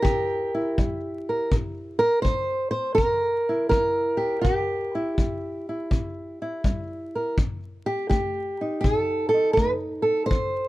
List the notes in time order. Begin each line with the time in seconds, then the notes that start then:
Already playing: E4 A#4
0.02 C3 G4, kick
0.55 E4
0.78 G3, kick
1.29 A#4
1.51 C3, kick
1.99 A#4
2.22 G3 C5, kick
2.71 C5
2.95 C3 A#4, kick
3.49 E4
3.69 G3 A#4, kick
4.17 G4
4.41 C3 G4, kick
4.95 E4
5.18 G3, kick
5.69 E4
5.91 C3, kick
6.42 E4
6.64 G3, kick
7.15 A#4
7.38 F3, kick
7.86 G4
8.10 A3 G4, kick
8.61 D#4
8.81 A4, kick
8.85 C3
9.29 A4
9.34 D#4
9.53 C5
9.57 A3, kick
10.02 A4
10.26 C5
10.31 F3, kick